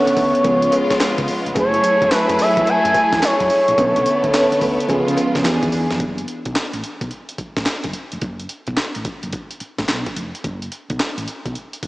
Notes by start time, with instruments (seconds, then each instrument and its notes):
Already playing: string section D3 A3 B3, fm electric piano D3 B3 C#4 A4, analog synth lead C#5
0.07 muted fretless electric bass stroke, closed hi-hat
0.16 fretless electric bass D2, kick, open hi-hat, tambourine, cowbell
0.35 closed hi-hat
0.44 fretless electric bass C#2, string section C#3 G#3 B3 F4, fm electric piano F3 B3 C#4 G#4, kick, closed hi-hat, cowbell
0.62 closed hi-hat
0.72 closed hi-hat, tambourine, cowbell
0.90 kick, snare, closed hi-hat
1.00 snare, clap, closed hi-hat, tambourine, cowbell
1.18 fretless electric bass C#3, kick, closed hi-hat
1.28 open hi-hat, tambourine
1.46 fretless electric bass F1, closed hi-hat
1.55 fretless electric bass F#1, fm electric piano F#3 A3 E4 G#4, string section F#3 A3 E4 G#4, kick, closed hi-hat, tambourine, cowbell
1.59 analog synth lead C#5
1.74 closed hi-hat
1.84 closed hi-hat, tambourine
2.02 fretless electric bass F#1, kick, closed hi-hat
2.11 fm electric piano F#3 A3 E4 G#4, muted fretless electric bass stroke, snare, clap, closed hi-hat, tambourine, cowbell
2.15 analog synth lead B4
2.29 fretless electric bass F#2, closed hi-hat
2.39 analog synth lead E5, open hi-hat, tambourine, cowbell
2.57 fretless electric bass E2, kick, closed hi-hat
2.66 analog synth lead G#5, closed hi-hat, cowbell
2.85 fretless electric bass F#2, closed hi-hat
2.94 kick, closed hi-hat, tambourine, cowbell
3.12 fretless electric bass E2, kick, snare, closed hi-hat
3.22 analog synth lead C#5, snare, clap, closed hi-hat, tambourine, cowbell
3.40 fretless electric bass F#2, kick, closed hi-hat
3.50 open hi-hat, tambourine
3.68 fretless electric bass A#1, closed hi-hat
3.78 fretless electric bass B1, fm electric piano D3 B3 C#4 A4, string section D3 A3 B3, kick, closed hi-hat, tambourine, cowbell
3.96 fretless electric bass B1, closed hi-hat
4.06 closed hi-hat, tambourine
4.24 fretless electric bass D2, kick, closed hi-hat
4.33 fm electric piano D3 B3 C#4 A4, snare, clap, closed hi-hat, tambourine, cowbell
4.52 muted fretless electric bass stroke, closed hi-hat
4.61 fretless electric bass D2, kick, open hi-hat, tambourine, cowbell
4.80 closed hi-hat
4.88 fretless electric bass C#2, string section C#3 G#3 F4, fm electric piano F3 B3 C#4 G#4, kick, closed hi-hat, cowbell
5.07 fretless electric bass C#3, closed hi-hat
5.17 closed hi-hat, tambourine, cowbell
5.35 fretless electric bass C#3, kick, snare, closed hi-hat
5.43 fretless electric bass E2, string section E3 D4 G#4, fm electric piano E3 B3 D4 G4, snare, clap, closed hi-hat, tambourine, cowbell
5.51 fm electric piano G#4
5.63 fretless electric bass D#2, kick, closed hi-hat
5.72 fretless electric bass E2, open hi-hat, tambourine
5.91 fretless electric bass F2, snare, closed hi-hat
6.00 fretless electric bass F#1, kick, closed hi-hat
6.18 closed hi-hat
6.28 closed hi-hat
6.45 fretless electric bass B1, kick, closed hi-hat
6.55 snare, clap, closed hi-hat
6.73 fretless electric bass A1, closed hi-hat
6.84 closed hi-hat
7.01 fretless electric bass B1, kick, closed hi-hat
7.11 closed hi-hat
7.29 closed hi-hat
7.38 muted fretless electric bass stroke, kick, closed hi-hat
7.57 fretless electric bass A1, kick, snare, closed hi-hat
7.66 muted fretless electric bass stroke, snare, clap, closed hi-hat
7.84 fretless electric bass F#1, kick, closed hi-hat
7.93 closed hi-hat
8.12 fretless electric bass F1, closed hi-hat
8.21 fretless electric bass F#1, kick, closed hi-hat
8.40 closed hi-hat
8.49 closed hi-hat
8.67 fretless electric bass B1, kick, closed hi-hat
8.77 snare, clap, closed hi-hat
8.95 fretless electric bass A1, closed hi-hat
9.05 kick, closed hi-hat
9.23 fretless electric bass F#1, closed hi-hat
9.33 kick, closed hi-hat
9.51 closed hi-hat
9.60 muted fretless electric bass stroke, closed hi-hat
9.78 fretless electric bass A1, kick, snare, closed hi-hat
9.88 fretless electric bass B1, snare, clap, closed hi-hat
10.06 kick, closed hi-hat
10.16 fretless electric bass F1, closed hi-hat
10.35 closed hi-hat
10.44 fretless electric bass F#1, kick, closed hi-hat
10.62 closed hi-hat
10.72 closed hi-hat
10.90 fretless electric bass B1, kick, closed hi-hat
10.99 snare, clap, closed hi-hat
11.18 fretless electric bass A1, closed hi-hat
11.28 closed hi-hat
11.46 fretless electric bass B1, kick, closed hi-hat
11.55 closed hi-hat
11.73 closed hi-hat
11.83 muted fretless electric bass stroke, kick, closed hi-hat